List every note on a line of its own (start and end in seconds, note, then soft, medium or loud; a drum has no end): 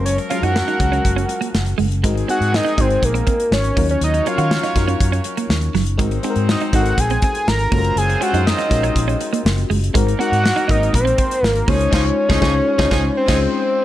0.00 0.17 F#1 loud
0.00 1.75 F3 medium
0.00 0.21 F#3 medium
0.00 1.75 F#3 medium
0.00 0.20 G#3 medium
0.00 1.75 A#3 medium
0.00 0.21 C#4 medium
0.00 0.21 F4 medium
0.00 0.21 A#4 medium
0.00 1.75 A#4 medium
0.05 0.17 C#5 loud
0.05 closed hi-hat loud
0.18 muted clean electric guitar stroke soft
0.18 closed hi-hat soft
0.30 0.70 F#3 medium
0.30 0.69 G#3 medium
0.30 0.70 C#4 medium
0.30 0.38 C#4 medium
0.30 0.70 F4 medium
0.30 0.70 A#4 medium
0.30 0.44 F5 loud
0.30 closed hi-hat medium
0.43 0.61 F#2 medium
0.43 0.51 D#4 medium
0.43 1.79 F#5 loud
0.43 closed hi-hat soft
0.56 snare loud
0.68 0.76 D#4 medium
0.68 closed hi-hat soft
0.79 0.98 C#2 medium
0.79 1.58 F#3 medium
0.79 1.58 G#3 medium
0.79 1.58 C#4 medium
0.79 1.58 A#4 medium
0.79 muted clean electric guitar stroke soft
0.79 kick medium
0.79 closed hi-hat medium
0.92 1.00 C#4 medium
0.92 closed hi-hat soft
1.05 1.23 F#1 loud
1.05 kick medium
1.05 closed hi-hat medium
1.16 1.24 C#4 medium
1.16 closed hi-hat soft
1.29 muted clean electric guitar stroke soft
1.29 closed hi-hat medium
1.41 1.49 A#3 medium
1.41 closed hi-hat medium
1.54 1.72 F#1 medium
1.54 snare loud
1.66 closed hi-hat soft
1.78 2.04 F#1 medium
1.78 1.86 G#3 medium
1.78 open hi-hat medium
1.92 closed hi-hat medium
2.03 2.22 G#1 loud
2.03 3.49 D#3 medium
2.03 2.23 G#3 medium
2.03 3.49 G#3 medium
2.03 2.11 G#3 medium
2.03 3.49 C4 medium
2.03 2.23 C4 medium
2.03 2.23 D#4 medium
2.03 2.23 F#4 medium
2.03 3.49 G#4 medium
2.03 2.23 A#4 medium
2.03 kick loud
2.03 closed hi-hat loud
2.15 muted clean electric guitar stroke soft
2.15 closed hi-hat medium
2.28 2.67 G#3 medium
2.28 2.67 C4 medium
2.28 2.36 C4 medium
2.28 2.68 D#4 medium
2.28 2.68 F#4 medium
2.28 2.68 G#4 medium
2.28 2.56 F#5 loud
2.28 closed hi-hat medium
2.41 2.59 G#2 medium
2.41 closed hi-hat medium
2.53 2.82 D#5 loud
2.53 muted clean electric guitar stroke soft
2.53 snare loud
2.65 2.73 D#4 medium
2.65 snare soft
2.65 closed hi-hat soft
2.77 2.96 G#1 medium
2.77 3.55 G#3 medium
2.77 3.56 C4 medium
2.77 3.56 D#4 medium
2.77 2.85 D#4 medium
2.77 3.56 F#4 medium
2.77 3.56 A#4 medium
2.77 3.06 C5 loud
2.77 kick medium
2.77 closed hi-hat medium
2.90 closed hi-hat soft
3.02 3.21 A#1 medium
3.02 3.53 A#4 medium
3.02 muted clean electric guitar stroke soft
3.02 kick medium
3.02 closed hi-hat medium
3.14 3.22 C4 medium
3.14 closed hi-hat soft
3.27 3.34 C4 medium
3.27 kick loud
3.27 closed hi-hat medium
3.40 closed hi-hat medium
3.51 3.70 G#1 medium
3.51 3.87 C#5 medium
3.51 snare loud
3.64 closed hi-hat soft
3.76 3.95 D#2 medium
3.76 4.16 F#3 medium
3.76 3.84 A#3 medium
3.76 5.71 A#3 medium
3.76 4.16 C#4 medium
3.76 5.71 C#4 medium
3.76 4.16 D#4 medium
3.76 4.17 F4 medium
3.76 5.71 F#4 medium
3.76 4.17 A#4 medium
3.76 5.71 C#5 medium
3.76 kick loud
3.76 open hi-hat medium
3.89 4.01 C#5 medium
3.89 closed hi-hat medium
4.01 4.19 D#2 loud
4.01 4.26 D#5 loud
4.01 closed hi-hat loud
4.14 muted clean electric guitar stroke soft
4.14 closed hi-hat medium
4.26 4.65 F#3 medium
4.26 4.65 C#4 medium
4.26 4.34 C#4 medium
4.26 4.65 D#4 medium
4.26 4.65 F4 medium
4.26 4.65 A#4 medium
4.26 5.22 F5 medium
4.26 closed hi-hat medium
4.38 4.56 D#3 medium
4.38 4.46 F#4 medium
4.38 closed hi-hat soft
4.51 snare loud
4.63 4.71 D#4 medium
4.63 snare soft
4.63 closed hi-hat soft
4.75 4.94 F#2 medium
4.75 5.54 F#3 medium
4.75 5.54 C#4 medium
4.75 5.54 D#4 medium
4.75 5.54 F4 medium
4.75 5.54 A#4 medium
4.75 muted clean electric guitar stroke soft
4.75 kick medium
4.75 snare soft
4.75 closed hi-hat medium
4.88 4.95 C#4 medium
4.88 closed hi-hat soft
5.00 5.19 F#2 medium
5.00 kick medium
5.00 closed hi-hat medium
5.12 5.20 C#4 medium
5.12 closed hi-hat soft
5.24 muted clean electric guitar stroke soft
5.24 closed hi-hat medium
5.37 5.45 A#3 medium
5.37 closed hi-hat medium
5.49 5.68 D#2 medium
5.49 snare loud
5.61 closed hi-hat soft
5.74 5.99 F#1 medium
5.74 5.82 F#3 medium
5.74 snare soft
5.74 open hi-hat medium
5.86 closed hi-hat medium
5.97 6.17 G#1 loud
5.97 7.45 F#3 medium
5.97 6.18 G#3 medium
5.97 6.07 G#3 medium
5.97 6.18 C4 medium
5.97 7.44 C4 medium
5.97 6.18 D#4 medium
5.97 7.44 D#4 medium
5.97 6.18 F#4 medium
5.97 6.18 A#4 medium
5.97 7.44 C5 medium
5.97 kick loud
5.97 closed hi-hat medium
6.11 muted clean electric guitar stroke soft
6.11 closed hi-hat soft
6.23 6.62 G#3 medium
6.23 6.62 C4 medium
6.23 6.32 C4 medium
6.23 6.63 D#4 medium
6.23 6.63 F#4 medium
6.23 6.30 G#4 medium
6.23 closed hi-hat medium
6.30 6.66 A#4 medium
6.36 6.54 G#2 medium
6.36 closed hi-hat soft
6.49 6.61 D#5 medium
6.49 muted clean electric guitar stroke soft
6.49 snare loud
6.60 6.69 D#4 medium
6.60 closed hi-hat soft
6.73 6.91 G#1 medium
6.73 7.51 G#3 medium
6.73 7.51 C4 medium
6.73 7.51 D#4 medium
6.73 6.81 D#4 medium
6.73 7.52 F#4 medium
6.73 6.79 A4 medium
6.73 7.01 F#5 medium
6.73 kick medium
6.73 closed hi-hat medium
6.80 7.55 A#4 medium
6.86 closed hi-hat soft
6.98 7.16 A#1 medium
6.98 7.23 G#5 loud
6.98 muted clean electric guitar stroke soft
6.98 kick medium
6.98 closed hi-hat loud
7.10 7.18 C4 medium
7.10 closed hi-hat soft
7.22 7.31 C4 medium
7.22 7.49 G#5 loud
7.22 kick loud
7.22 closed hi-hat medium
7.35 closed hi-hat medium
7.48 7.66 G#1 medium
7.48 7.72 A#5 loud
7.48 snare loud
7.59 closed hi-hat medium
7.71 7.90 F#1 loud
7.71 9.66 F#3 medium
7.71 8.11 G#3 medium
7.71 7.80 A#3 medium
7.71 9.66 C4 medium
7.71 8.12 C#4 medium
7.71 9.66 F4 medium
7.71 8.12 F4 medium
7.71 8.12 F#4 medium
7.71 7.79 A4 medium
7.71 9.66 C5 medium
7.71 7.99 A#5 loud
7.71 kick loud
7.71 open hi-hat medium
7.79 8.15 A#4 medium
7.85 closed hi-hat medium
7.96 8.15 F#1 loud
7.96 8.24 G#5 loud
7.96 closed hi-hat medium
8.09 muted clean electric guitar stroke soft
8.09 closed hi-hat medium
8.21 8.60 G#3 medium
8.21 8.29 C#4 medium
8.21 8.60 C#4 medium
8.21 8.60 F4 medium
8.21 8.60 F#4 medium
8.21 8.28 G4 medium
8.21 8.46 F#5 loud
8.21 closed hi-hat medium
8.28 8.64 G#4 medium
8.33 8.52 F#2 medium
8.33 8.42 D#4 medium
8.33 closed hi-hat soft
8.47 9.41 D#5 medium
8.47 snare loud
8.58 8.66 D#4 medium
8.58 snare soft
8.58 closed hi-hat soft
8.69 8.89 A#1 medium
8.69 9.48 G#3 medium
8.69 9.49 C#4 medium
8.69 9.49 F4 medium
8.69 9.49 F#4 medium
8.69 9.49 A#4 medium
8.69 muted clean electric guitar stroke soft
8.69 kick medium
8.69 snare soft
8.69 closed hi-hat medium
8.83 8.91 C#4 medium
8.83 closed hi-hat soft
8.95 9.14 A#1 medium
8.95 kick medium
8.95 closed hi-hat medium
9.08 9.16 C#4 medium
9.08 closed hi-hat soft
9.21 muted clean electric guitar stroke soft
9.21 closed hi-hat medium
9.33 9.40 A#3 medium
9.33 closed hi-hat medium
9.45 9.63 F#1 medium
9.45 snare loud
9.58 closed hi-hat soft
9.70 9.88 F#1 medium
9.70 9.78 G#3 medium
9.70 open hi-hat medium
9.84 closed hi-hat medium
9.94 10.13 G#1 loud
9.94 11.40 F#3 medium
9.94 10.14 G#3 medium
9.94 10.02 G#3 medium
9.94 11.40 A#3 medium
9.94 10.14 C4 medium
9.94 10.14 D#4 medium
9.94 11.40 D#4 medium
9.94 10.14 F#4 medium
9.94 10.14 A#4 loud
9.94 11.40 A#4 loud
9.94 kick loud
9.94 closed hi-hat loud
10.07 muted clean electric guitar stroke soft
10.07 closed hi-hat soft
10.19 10.58 G#3 medium
10.19 10.27 C4 medium
10.19 10.59 C4 medium
10.19 10.59 D#4 medium
10.19 10.59 F#4 medium
10.19 10.59 A#4 medium
10.19 10.72 F#5 loud
10.19 closed hi-hat medium
10.32 10.50 G#2 medium
10.32 closed hi-hat soft
10.44 muted clean electric guitar stroke soft
10.44 snare loud
10.56 10.64 D#4 medium
10.56 closed hi-hat soft
10.68 10.87 G#1 medium
10.68 11.47 G#3 medium
10.68 10.75 A#3 medium
10.68 10.76 D#4 medium
10.68 11.47 D#4 medium
10.68 11.47 F#4 medium
10.68 11.47 A#4 medium
10.68 10.94 D#5 loud
10.68 kick medium
10.68 closed hi-hat medium
10.75 11.50 C4 medium
10.83 closed hi-hat soft
10.93 11.12 A#1 medium
10.93 11.46 C5 loud
10.93 muted clean electric guitar stroke soft
10.93 kick medium
10.93 closed hi-hat medium
11.05 11.13 C4 medium
11.05 closed hi-hat soft
11.18 11.26 C4 medium
11.18 kick loud
11.18 closed hi-hat medium
11.31 closed hi-hat medium
11.43 11.61 G#1 medium
11.43 11.71 A#4 loud
11.43 snare loud
11.56 closed hi-hat medium
11.67 11.86 C#2 loud
11.67 11.90 F3 medium
11.67 11.91 G#3 medium
11.67 11.89 G#3 medium
11.67 11.76 A#3 medium
11.67 11.92 C#4 medium
11.67 11.90 D#4 medium
11.67 11.93 D#4 medium
11.67 11.93 F4 medium
11.67 11.89 G#4 medium
11.67 11.93 C5 medium
11.67 13.16 C#5 loud
11.67 kick loud
11.67 open hi-hat medium
11.80 closed hi-hat medium
11.91 12.09 C#2 loud
11.91 12.04 F3 loud
11.91 12.04 G#3 medium
11.91 12.09 G#3 medium
11.91 12.10 C#4 loud
11.91 12.04 D#4 loud
11.91 12.10 D#4 loud
11.91 12.10 F4 loud
11.91 12.04 G#4 loud
11.91 12.10 C5 loud
11.91 kick loud
11.91 snare loud
11.91 crash medium
12.29 12.40 C#2 loud
12.29 12.37 F3 loud
12.29 12.37 G#3 medium
12.29 12.40 G#3 loud
12.29 12.40 C#4 loud
12.29 12.37 D#4 loud
12.29 12.40 D#4 loud
12.29 12.40 F4 loud
12.29 12.37 G#4 loud
12.29 kick loud
12.29 snare loud
12.36 12.44 G#4 medium
12.41 12.59 C#2 loud
12.41 12.54 F3 loud
12.41 12.58 G#3 loud
12.41 12.54 G#3 medium
12.41 12.59 C#4 loud
12.41 12.54 D#4 loud
12.41 12.59 D#4 medium
12.41 12.59 F4 loud
12.41 12.54 G#4 loud
12.41 kick loud
12.41 snare loud
12.48 12.62 G#4 loud
12.77 12.89 C#2 loud
12.77 12.86 F3 loud
12.77 12.86 G#3 loud
12.77 12.89 G#3 loud
12.77 12.89 C#4 loud
12.77 12.86 D#4 loud
12.77 12.89 D#4 loud
12.77 12.90 F4 loud
12.77 12.86 G#4 loud
12.77 12.90 C5 loud
12.77 kick loud
12.77 snare medium
12.90 13.08 C#2 loud
12.90 13.03 F3 loud
12.90 13.03 G#3 loud
12.90 13.08 G#3 medium
12.90 13.08 C#4 medium
12.90 13.03 D#4 loud
12.90 13.08 D#4 medium
12.90 13.09 F4 loud
12.90 13.03 G#4 loud
12.90 13.09 C5 medium
12.90 kick loud
12.90 snare loud
13.17 13.40 C5 medium
13.26 13.45 C#2 loud
13.26 13.40 F3 medium
13.26 13.40 G#3 medium
13.26 13.45 G#3 loud
13.26 13.45 C#4 loud
13.26 13.40 D#4 medium
13.26 13.45 D#4 medium
13.26 13.45 F4 loud
13.26 13.40 G#4 medium
13.26 13.46 C5 loud
13.26 kick loud
13.26 snare loud
13.26 crash medium
13.42 13.85 C5 medium